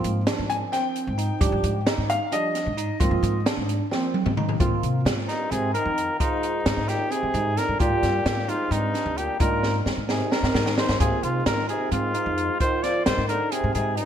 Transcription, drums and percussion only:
0.04 closed hi-hat medium
0.27 snare loud
0.27 closed hi-hat medium
0.50 closed hi-hat medium
0.73 snare soft
0.73 closed hi-hat medium
0.96 closed hi-hat medium
1.19 closed hi-hat medium
1.41 kick loud
1.41 closed hi-hat medium
1.64 closed hi-hat medium
1.87 snare loud
1.87 closed hi-hat medium
2.10 closed hi-hat medium
2.32 closed hi-hat medium
2.55 snare soft
2.55 closed hi-hat medium
2.78 closed hi-hat medium
3.00 kick loud
3.00 closed hi-hat medium
3.23 closed hi-hat medium
3.46 snare loud
3.46 closed hi-hat medium
3.69 closed hi-hat medium
3.92 snare medium
4.14 high tom medium
4.26 mid tom medium
4.37 mid tom loud
4.49 floor tom medium
4.60 kick loud
4.60 closed hi-hat medium
4.83 closed hi-hat medium
5.06 snare loud
5.06 closed hi-hat medium
5.29 snare soft
5.29 closed hi-hat medium
5.52 closed hi-hat medium
5.75 closed hi-hat medium
5.98 closed hi-hat medium
6.20 kick medium
6.20 closed hi-hat medium
6.43 closed hi-hat medium
6.66 snare loud
6.66 closed hi-hat medium
6.89 snare soft
6.89 closed hi-hat medium
7.12 closed hi-hat medium
7.34 closed hi-hat medium
7.57 snare soft
7.57 closed hi-hat medium
7.80 kick loud
7.80 closed hi-hat medium
8.03 snare soft
8.03 closed hi-hat medium
8.26 snare loud
8.26 closed hi-hat medium
8.49 closed hi-hat medium
8.72 closed hi-hat medium
8.95 snare soft
8.95 closed hi-hat medium
9.18 closed hi-hat medium
9.40 kick loud
9.40 closed hi-hat medium
9.63 snare medium
9.86 snare medium
10.09 snare medium
10.32 snare medium
10.44 snare medium
10.55 snare medium
10.66 snare medium
10.78 snare medium
10.89 snare medium
11.00 kick loud
11.00 closed hi-hat medium
11.23 closed hi-hat medium
11.46 snare loud
11.46 closed hi-hat medium
11.69 closed hi-hat medium
11.92 closed hi-hat medium
12.15 closed hi-hat medium
12.38 closed hi-hat medium
12.60 kick medium
12.60 closed hi-hat medium
12.84 snare soft
12.84 closed hi-hat medium
13.06 snare loud
13.06 closed hi-hat medium
13.29 closed hi-hat medium
13.52 closed hi-hat medium
13.75 closed hi-hat medium
13.97 closed hi-hat medium

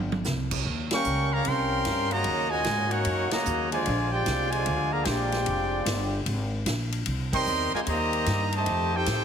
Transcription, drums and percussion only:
0.12 high tom loud
0.24 snare medium
0.24 hi-hat pedal medium
0.51 kick medium
0.51 crash loud
0.91 snare loud
0.91 ride medium
1.04 hi-hat pedal medium
1.45 ride medium
1.85 snare medium
1.85 hi-hat pedal medium
1.85 ride medium
2.11 ride medium
2.24 ride medium
2.64 snare medium
2.64 hi-hat pedal medium
2.64 ride medium
2.91 ride medium
3.05 ride medium
3.31 snare loud
3.31 ride medium
3.45 hi-hat pedal medium
3.72 ride medium
3.86 ride medium
4.26 snare medium
4.26 hi-hat pedal medium
4.26 ride medium
4.52 ride medium
4.66 ride medium
5.05 snare medium
5.05 hi-hat pedal medium
5.05 ride medium
5.32 snare soft
5.32 ride medium
5.46 ride medium
5.86 snare medium
5.86 hi-hat pedal medium
5.86 ride medium
6.26 ride medium
6.66 snare medium
6.66 hi-hat pedal medium
6.66 ride medium
6.92 ride medium
7.06 ride medium
7.33 kick loud
7.33 crash medium
7.46 hi-hat pedal medium
7.87 ride medium
8.13 ride medium
8.26 snare medium
8.26 hi-hat pedal medium
8.26 ride medium
8.52 ride medium
8.66 ride medium
9.06 snare medium
9.06 hi-hat pedal medium
9.06 ride medium

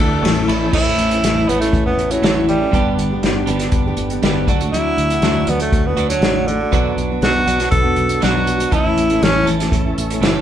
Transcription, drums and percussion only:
0.00 ride medium
0.25 snare loud
0.25 ride medium
0.49 ride medium
0.73 kick loud
0.73 crash loud
0.98 closed hi-hat medium
1.11 closed hi-hat medium
1.24 snare loud
1.24 closed hi-hat medium
1.49 closed hi-hat medium
1.62 snare soft
1.62 closed hi-hat medium
1.73 kick loud
1.73 closed hi-hat medium
1.99 closed hi-hat medium
2.11 closed hi-hat medium
2.23 snare loud
2.23 closed hi-hat medium
2.49 closed hi-hat medium
2.73 kick loud
2.73 closed hi-hat medium
2.99 closed hi-hat medium
3.23 snare loud
3.23 closed hi-hat medium
3.47 closed hi-hat medium
3.59 snare soft
3.59 closed hi-hat medium
3.72 kick loud
3.72 closed hi-hat medium
3.97 closed hi-hat medium
4.10 closed hi-hat medium
4.23 snare loud
4.23 closed hi-hat medium
4.48 kick loud
4.48 closed hi-hat medium
4.61 closed hi-hat medium
4.74 closed hi-hat medium
4.98 closed hi-hat medium
5.10 closed hi-hat medium
5.22 snare loud
5.22 closed hi-hat medium
5.47 closed hi-hat medium
5.60 closed hi-hat medium
5.73 kick loud
5.73 closed hi-hat medium
5.97 closed hi-hat medium
6.10 closed hi-hat medium
6.22 snare loud
6.22 closed hi-hat medium
6.48 closed hi-hat medium
6.73 kick loud
6.73 closed hi-hat medium
6.98 closed hi-hat medium
7.22 snare loud
7.22 closed hi-hat medium
7.47 closed hi-hat medium
7.60 snare soft
7.60 closed hi-hat medium
7.71 kick loud
7.71 closed hi-hat medium
7.96 closed hi-hat medium
8.09 closed hi-hat medium
8.22 snare loud
8.22 closed hi-hat medium
8.47 closed hi-hat medium
8.60 closed hi-hat medium
8.72 kick loud
8.72 closed hi-hat medium
8.98 closed hi-hat medium
9.10 closed hi-hat medium
9.23 snare loud
9.23 closed hi-hat medium
9.47 closed hi-hat medium
9.60 snare soft
9.60 closed hi-hat medium
9.72 kick loud
9.72 closed hi-hat medium
9.98 closed hi-hat medium
10.10 closed hi-hat medium
10.23 snare loud
10.23 closed hi-hat medium

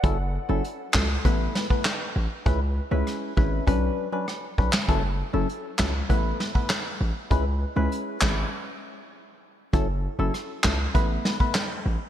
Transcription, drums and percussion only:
0.04 kick loud
0.04 closed hi-hat medium
0.64 closed hi-hat medium
0.94 kick medium
0.94 snare loud
0.94 clap loud
1.25 kick medium
1.25 closed hi-hat medium
1.55 snare medium
1.70 kick medium
1.85 cross-stick medium
1.85 snare loud
1.85 clap medium
1.85 closed hi-hat medium
2.46 kick loud
2.46 closed hi-hat medium
3.07 cross-stick medium
3.07 closed hi-hat medium
3.37 kick medium
3.67 kick loud
3.67 closed hi-hat medium
4.28 cross-stick medium
4.28 closed hi-hat medium
4.58 kick medium
4.73 snare loud
4.73 clap medium
4.89 kick loud
4.89 closed hi-hat medium
5.49 closed hi-hat medium
5.79 kick medium
5.79 snare loud
5.79 clap loud
6.10 kick medium
6.10 closed hi-hat medium
6.40 snare medium
6.55 kick medium
6.69 cross-stick medium
6.69 snare loud
6.69 clap medium
6.69 closed hi-hat medium
7.31 kick loud
7.31 closed hi-hat medium
7.92 closed hi-hat medium
8.21 kick medium
8.21 snare loud
8.21 clap loud
9.73 kick loud
9.73 closed hi-hat medium
10.34 cross-stick medium
10.34 closed hi-hat medium
10.64 kick medium
10.64 snare loud
10.64 clap medium
10.95 kick loud
10.95 closed hi-hat medium
11.25 snare medium
11.40 kick medium
11.54 cross-stick medium
11.54 snare loud
11.54 clap medium
11.54 closed hi-hat medium

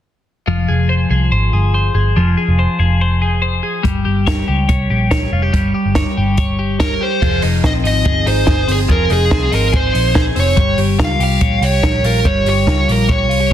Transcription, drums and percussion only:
3.85 kick medium
3.85 closed hi-hat medium
4.27 kick medium
4.27 snare medium
4.27 closed hi-hat medium
4.69 kick medium
4.69 closed hi-hat medium
5.11 kick medium
5.11 snare medium
5.11 closed hi-hat medium
5.54 kick medium
5.54 closed hi-hat medium
5.95 kick medium
5.95 snare medium
5.95 closed hi-hat medium
6.38 kick medium
6.38 closed hi-hat medium
6.80 kick medium
6.80 snare medium
6.80 closed hi-hat medium
7.22 kick medium
7.22 crash medium
7.42 open hi-hat medium
7.64 kick loud
7.64 snare medium
7.64 closed hi-hat medium
7.85 open hi-hat medium
8.05 kick loud
8.05 closed hi-hat medium
8.27 open hi-hat medium
8.47 kick medium
8.47 snare medium
8.47 closed hi-hat medium
8.69 open hi-hat medium
8.89 kick medium
8.89 closed hi-hat medium
9.10 open hi-hat medium
9.31 kick medium
9.31 snare medium
9.31 closed hi-hat medium
9.52 open hi-hat medium
9.73 kick loud
9.73 closed hi-hat medium
9.95 open hi-hat medium
10.15 kick medium
10.15 snare medium
10.15 closed hi-hat medium
10.36 open hi-hat medium
10.57 kick medium
10.57 closed hi-hat medium
10.78 open hi-hat medium
11.00 kick medium
11.00 snare loud
11.00 closed hi-hat medium
11.20 open hi-hat medium
11.41 kick medium
11.41 closed hi-hat medium
11.63 open hi-hat medium
11.83 kick medium
11.83 snare medium
11.83 closed hi-hat medium
12.04 open hi-hat medium
12.25 kick medium
12.25 closed hi-hat medium
12.46 open hi-hat medium
12.67 kick loud
12.67 snare loud
12.67 closed hi-hat medium
12.89 open hi-hat medium
13.09 kick loud
13.09 closed hi-hat medium
13.31 open hi-hat medium

